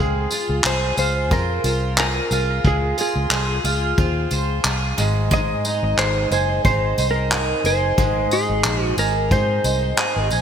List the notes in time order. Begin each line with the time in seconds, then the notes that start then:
Already playing: C#2 G#3 C4 G#4 C5 F5
0.00 G#3 G#4
0.31 F4, tambourine
0.49 C#2
0.64 C2 G#4 C5, clap
0.97 C#2 F4 C5 F5, tambourine
1.31 F2 C4 F4 A#4, kick
1.64 C2 F4 C5, tambourine
1.97 F4 G#4 A#4, clap
2.31 C2 F4 F5, tambourine
2.65 C#2 G#3 G#4, kick
2.98 F4 G#4, tambourine
3.16 C#2
3.30 C2 G#4 C5, clap
3.64 C#2 F4 F5, tambourine
3.98 D#2 C4 F4, kick
4.31 C#2 F4 C5, tambourine
4.64 C2 F4 G#4, clap
4.98 G#1 G#2 G#3, tambourine
5.31 G#2 G#3 D#5, kick
5.65 D#4, tambourine
5.83 G#1
5.97 G#1 G#4 C5, clap
6.31 F#1 D#4 C5 G#5, tambourine
6.65 G#1 C4 D#4 C5, kick
6.98 C2 D#4 C5, tambourine
7.11 A#4
7.31 D#4 G#4, clap
7.64 F#1 D#4 C5 G#5, tambourine
7.98 G#1 G#2 G#3, kick
8.31 D#4 G#4, tambourine
8.49 G#1
8.64 A#1 G#4 C5, clap
8.84 F#4
8.97 G#1 D#4 A#4 G#5, tambourine
9.31 G#2 C4 D#4 C5, kick
9.64 C2 D#4 C5, tambourine
9.97 D#4 G#4, clap
10.16 G#1
10.31 A#1 D#4 G#5, tambourine